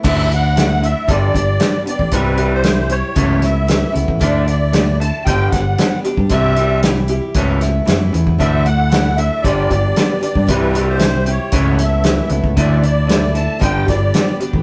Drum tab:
CC |x---------------|----------------|----------------|----------------|
HH |--x-x-x-x-x-x-x-|x-x-x-x-x-x-x-x-|x-x-x-x-x-x-x-x-|x-x-x-x-x-x-x-x-|
SD |----o-------o---|----o-----o-o---|----o-----o-o---|----o-----o-o---|
BD |o-------o-o----o|o-------o------o|o-------o-o----o|o-------o------o|

CC |----------------|----------------|----------------|
HH |x-x-x-x-x-x-x-x-|x-x-x-x-x-x-x-x-|x-x-x-x-x-x-x-x-|
SD |----o-------o---|----o-------o---|----o-----o-o---|
BD |o-------o-o----o|o-------o------o|o-------o-o----o|